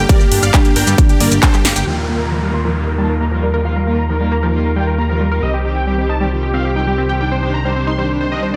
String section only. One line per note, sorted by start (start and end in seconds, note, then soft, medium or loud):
0.09 0.25 D3 medium
0.09 0.25 G3 medium
0.09 0.25 A#3 medium
0.09 0.25 G4 medium
0.32 0.47 D3 medium
0.32 0.47 G3 medium
0.32 0.47 A#3 medium
0.32 0.47 G4 medium
0.54 0.62 D3 medium
0.54 0.62 G3 medium
0.54 0.62 A#3 medium
0.54 0.62 G4 medium
0.65 0.81 D3 medium
0.65 0.80 G3 medium
0.65 0.80 A#3 medium
0.65 0.81 G4 medium
0.87 0.95 D3 medium
0.87 0.95 G3 medium
0.87 0.95 A#3 medium
0.87 0.95 G4 medium
0.98 1.14 D3 loud
0.98 1.14 G3 loud
0.98 1.14 A#3 loud
0.98 1.14 G4 medium
1.20 1.36 D3 medium
1.20 1.36 G3 loud
1.20 1.36 A#3 medium
1.20 1.36 G4 medium
1.43 1.50 D3 medium
1.43 1.50 G3 medium
1.43 1.50 A#3 medium
1.43 1.50 G4 medium
1.54 1.69 D3 medium
1.54 1.69 G3 medium
1.54 1.69 A#3 medium
1.54 1.69 G4 medium
1.76 1.84 D3 medium
1.76 1.84 G3 medium
1.76 1.84 A#3 medium
1.76 1.84 G4 medium
1.87 2.03 D#3 medium
1.87 2.03 G3 medium
1.87 2.03 A#3 medium
1.87 2.03 F4 medium
2.09 2.25 D#3 medium
2.09 2.25 G3 medium
2.09 2.25 A#3 medium
2.09 2.25 F4 medium
2.32 2.39 D#3 medium
2.32 2.39 G3 medium
2.32 2.39 A#3 medium
2.32 2.39 F4 medium
2.43 2.58 D#3 medium
2.43 2.58 G3 medium
2.43 2.58 A#3 medium
2.43 2.58 F4 medium
2.65 2.73 D#3 medium
2.65 2.73 G3 medium
2.65 2.73 A#3 medium
2.65 2.73 F4 medium
2.76 2.92 D#3 medium
2.76 2.92 G3 medium
2.76 2.92 A#3 medium
2.76 2.92 F4 medium
2.98 3.14 D#3 medium
2.98 3.14 G3 medium
2.98 3.14 A#3 medium
2.98 3.14 F4 medium
3.20 3.28 D#3 medium
3.20 3.28 G3 medium
3.20 3.28 A#3 medium
3.20 3.28 F4 medium
3.31 3.47 D#3 medium
3.31 3.47 G3 medium
3.31 3.47 A#3 medium
3.31 3.47 F4 medium
3.54 3.62 D#3 medium
3.54 3.62 G3 medium
3.54 3.62 A#3 medium
3.54 3.62 F4 medium
3.65 3.80 D#3 medium
3.65 3.80 G3 medium
3.65 3.80 A#3 medium
3.65 3.80 F4 medium
3.87 4.03 D#3 medium
3.87 4.03 G3 medium
3.87 4.03 A#3 medium
3.87 4.03 F4 medium
4.09 4.17 D#3 medium
4.09 4.17 G3 medium
4.09 4.17 A#3 medium
4.09 4.17 F4 medium
4.20 4.36 D#3 medium
4.20 4.36 G3 medium
4.20 4.36 A#3 medium
4.20 4.36 F4 medium
4.43 4.50 D#3 medium
4.43 4.50 G3 medium
4.43 4.50 A#3 medium
4.43 4.50 F4 medium
4.54 4.69 D#3 medium
4.54 4.69 G3 medium
4.54 4.69 A#3 medium
4.54 4.69 F4 medium
4.76 4.92 D#3 medium
4.76 4.92 G3 medium
4.76 4.92 A#3 medium
4.76 4.92 F4 medium
4.98 5.06 D#3 medium
4.98 5.06 G3 medium
4.98 5.06 A#3 medium
4.98 5.06 F4 medium
5.09 5.25 D#3 medium
5.09 5.25 G3 medium
5.09 5.25 A#3 medium
5.09 5.25 F4 medium
5.31 5.39 D#3 medium
5.31 5.39 G3 medium
5.31 5.39 A#3 medium
5.31 5.39 F4 medium
5.43 5.58 D#3 medium
5.43 5.58 G3 medium
5.43 5.58 C4 medium
5.43 5.58 G4 medium
5.65 5.81 D#3 medium
5.65 5.80 G3 medium
5.65 5.81 C4 medium
5.65 5.81 G4 medium
5.87 5.95 D#3 medium
5.87 5.95 G3 medium
5.87 5.95 C4 medium
5.87 5.95 G4 medium
5.98 6.14 D#3 medium
5.98 6.14 G3 medium
5.98 6.14 C4 medium
5.98 6.14 G4 medium
6.20 6.28 D#3 medium
6.20 6.28 G3 medium
6.20 6.28 C4 medium
6.20 6.28 G4 medium
6.31 6.47 D#3 medium
6.31 6.47 G3 medium
6.31 6.47 C4 medium
6.31 6.47 G4 medium
6.54 6.69 D#3 medium
6.54 6.69 G3 medium
6.54 6.69 C4 medium
6.54 6.69 G4 medium
6.76 6.84 D#3 medium
6.76 6.84 G3 medium
6.76 6.84 C4 medium
6.76 6.84 G4 medium
6.87 7.03 D#3 medium
6.87 7.03 G3 medium
6.87 7.03 C4 medium
6.87 7.03 G4 medium
7.09 7.17 D#3 medium
7.09 7.17 G3 medium
7.09 7.17 C4 medium
7.09 7.17 G4 medium
7.20 7.36 D#3 medium
7.20 7.36 G3 medium
7.20 7.36 D4 medium
7.20 7.36 G4 medium
7.43 7.58 D#3 medium
7.43 7.58 G3 medium
7.43 7.58 D4 medium
7.43 7.58 G4 medium
7.65 7.73 D#3 medium
7.65 7.73 G3 medium
7.65 7.73 D4 medium
7.65 7.73 G4 medium
7.76 7.92 D#3 medium
7.76 7.92 G3 medium
7.76 7.92 D4 medium
7.76 7.91 G4 medium
7.98 8.06 D#3 medium
7.98 8.06 G3 medium
7.98 8.06 D4 medium
7.98 8.06 G4 medium
8.09 8.25 D#3 medium
8.09 8.25 G3 medium
8.09 8.25 D4 medium
8.09 8.25 G4 medium
8.31 8.47 D#3 medium
8.31 8.47 G3 medium
8.31 8.47 D4 medium
8.31 8.47 G4 medium